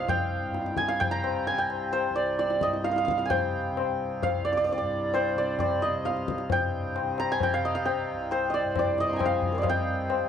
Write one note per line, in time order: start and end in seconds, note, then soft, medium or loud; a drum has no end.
0.00 2.09 C2 medium
0.00 0.43 G2 medium
0.00 1.00 C3 medium
0.00 1.34 C5 medium
0.00 1.77 D#5 medium
0.00 0.88 F5 medium
0.09 0.83 G5 loud
0.09 tabla tin loud
0.09 tabla ge medium
0.43 2.64 G2 medium
0.54 tabla te medium
0.66 tabla te medium
0.77 1.06 G#5 loud
0.77 tabla ke medium
0.88 2.84 F5 medium
0.88 tabla te medium
1.00 1.54 C3 medium
1.00 1.53 G5 loud
1.00 tabla tin medium
1.00 tabla ge medium
1.11 2.98 A#5 loud
1.24 tabla na medium
1.47 1.64 G#5 medium
1.47 tabla tin medium
1.54 3.17 C3 medium
1.58 3.30 G5 medium
1.70 tabla na medium
1.93 4.57 C5 medium
1.93 tabla na medium
2.10 4.26 C2 medium
2.16 2.39 D5 medium
2.39 2.69 D5 medium
2.39 tabla te medium
2.50 tabla te medium
2.61 4.81 G2 medium
2.61 4.51 D#5 medium
2.61 tabla ke medium
2.73 tabla te medium
2.84 2.91 F5 medium
2.84 tabla te medium
2.91 2.97 F5 medium
2.96 3.04 F5 medium
2.96 tabla te medium
3.05 3.10 F5 medium
3.05 tabla ke medium
3.11 3.17 F5 medium
3.17 3.72 C3 medium
3.17 4.23 F5 medium
3.17 tabla te medium
3.25 3.36 G#5 medium
3.30 5.37 G5 loud
3.30 tabla tin loud
3.30 tabla ge medium
3.72 5.36 C3 medium
3.77 tabla na medium
4.23 6.05 F5 medium
4.23 tabla tin medium
4.23 tabla ge medium
4.27 8.12 C2 medium
4.45 4.52 D5 medium
4.53 4.57 D5 medium
4.57 4.64 D5 medium
4.64 4.72 D5 medium
4.69 4.77 D5 medium
4.69 tabla tin medium
4.78 6.50 G2 medium
4.78 5.38 D5 medium
5.14 7.78 C5 medium
5.14 tabla na medium
5.36 5.90 C3 medium
5.36 5.60 D5 medium
5.59 5.88 D5 medium
5.59 tabla na medium
5.59 tabla ge medium
5.82 7.65 D#5 medium
5.82 tabla te medium
5.90 7.03 C3 medium
6.05 7.53 F5 medium
6.05 tabla te medium
6.17 tabla te medium
6.28 tabla ke medium
6.38 tabla te medium
6.50 8.63 G2 medium
6.50 7.38 G5 loud
6.50 tabla tin loud
6.50 tabla ge loud
6.96 tabla na medium
7.03 7.57 C3 medium
7.18 9.06 A#5 loud
7.18 tabla na medium
7.32 7.49 G#5 loud
7.40 7.85 G5 medium
7.40 tabla tin medium
7.40 tabla ge medium
7.54 9.17 C3 medium
7.54 7.74 F5 medium
7.65 8.50 D#5 medium
7.75 9.25 F5 medium
7.85 9.19 G5 medium
7.85 tabla tin medium
8.12 10.24 C2 medium
8.31 9.54 C5 medium
8.31 tabla na medium
8.50 8.60 D#5 medium
8.54 8.79 D5 medium
8.64 10.29 G2 medium
8.76 9.06 D5 medium
8.76 tabla na medium
8.76 tabla ge medium
8.98 9.61 D#5 medium
8.98 tabla te medium
9.07 10.29 C6 soft
9.07 9.68 D6 soft
9.13 9.71 C3 medium
9.13 9.75 G#5 medium
9.13 10.29 A#5 soft
9.19 9.69 G5 medium
9.19 tabla na medium
9.19 tabla ge medium
9.26 9.63 F5 medium
9.42 tabla ge medium
9.52 10.29 A#4 soft
9.52 10.29 C5 soft
9.58 10.29 D5 medium
9.58 10.29 D#5 medium
9.63 10.29 F5 medium
9.63 tabla tin loud
9.63 tabla ge loud
9.69 10.29 C3 medium
9.69 10.29 G5 medium
10.10 tabla na medium
10.24 10.29 C2 medium